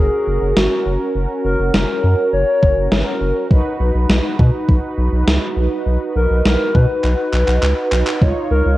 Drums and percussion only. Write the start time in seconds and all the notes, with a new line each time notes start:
0.57 snare
1.74 snare
2.63 kick
2.92 snare
3.51 kick
4.10 snare
4.39 kick
4.69 kick
5.28 snare
6.45 snare
6.75 kick
7.04 clap
7.34 clap
7.48 clap
7.63 clap
7.92 clap
8.07 clap
8.22 kick